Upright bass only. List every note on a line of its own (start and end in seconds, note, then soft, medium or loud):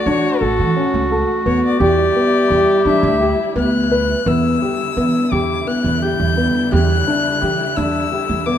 0.06 0.20 E3 medium
0.41 0.61 A1 medium
0.59 0.73 E3 medium
0.94 1.22 C#2 medium
1.46 1.60 E2 medium
1.80 2.08 E2 medium
2.50 2.64 E2 medium
2.86 2.99 E3 medium
3.03 3.31 D2 loud
3.56 4.13 D2 medium
4.26 4.55 E2 loud
4.97 5.11 E3 medium
5.32 5.60 E2 medium
5.84 6.13 E2 medium
6.20 6.48 E2 medium
6.73 7.01 E2 loud
7.43 7.56 E3 medium
7.78 8.05 E2 medium
8.29 8.57 E2 medium